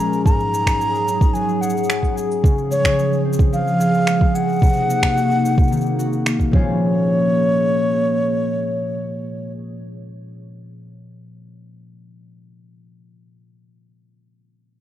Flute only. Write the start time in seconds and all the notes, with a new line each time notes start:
Already playing: A#5
0.25 A#5
1.34 G#5
1.61 F#5
2.71 C#5
3.53 F5
4.35 F#5
6.53 C#5